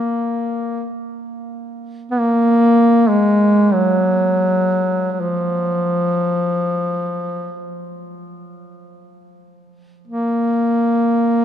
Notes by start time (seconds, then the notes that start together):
Already playing: A#3
2.11 B3
2.19 A#3
3.09 G#3
3.73 F#3
5.12 F#3
5.21 F3
10.07 A#3